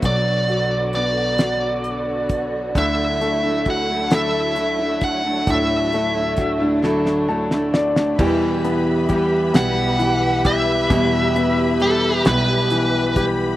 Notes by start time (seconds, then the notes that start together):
Already playing: D3 F#3 B3 F#4
0.02 B1 F#3 D5, kick, closed hi-hat
0.48 F#4, closed hi-hat
0.93 B3 D5, snare, closed hi-hat
1.38 F#4, snare, closed hi-hat
1.84 closed hi-hat
2.29 kick, closed hi-hat
2.74 D2 D3 F#3 A3 D4 E4, kick, closed hi-hat
2.79 E5
3.20 F#3 A3 D4 E4, closed hi-hat
3.43 A3 D4 E4
3.66 F#4, kick, closed hi-hat
3.70 F#5
3.88 A3 D4 E4
4.10 D3 F#3 A3 D4 E4 A4 E5, snare, closed hi-hat
4.55 F#3 A3 D4 E4, closed hi-hat
4.78 A3 D4 E4
5.01 F#5, kick, closed hi-hat
5.24 A3 D4 E4
5.47 D2 A2 D3 F#3 A3 D4 E4 E5, kick, closed hi-hat
5.92 F#3 A3 D4 E4, closed hi-hat
6.14 A3 D4 E4
6.37 F#4, kick, snare, closed hi-hat
6.60 A3 D4 E4
6.82 D3 F#3 A3 D4 E4 A4, snare
7.06 snare
7.28 F#3 A3 D4 E4 A5
7.51 A3 D4 E4, snare
7.74 D5, snare
7.96 A3 D4 E4, snare
8.18 E2 B2 E3 G3 E4 G4 B4 E5 B5, kick, crash
8.65 B3, closed hi-hat
9.09 E3 G3 E4 G4, kick, closed hi-hat
9.54 B1 E2 B2 E3 G3 B3 E4 G4 F#5, snare, closed hi-hat
9.99 E3, closed hi-hat
10.45 E3 G3 E4 G4 E5, kick, closed hi-hat
10.90 E2 B2 E3 G3 E4 G4, kick, closed hi-hat
11.35 B3, closed hi-hat
11.80 E3 G3 E4 G4 A4, closed hi-hat
12.25 B1 E2 B2 E3 G3 B3 E4 G4 B4, snare, closed hi-hat
12.70 E3, closed hi-hat
13.16 E3 G3 E4 G4, kick, closed hi-hat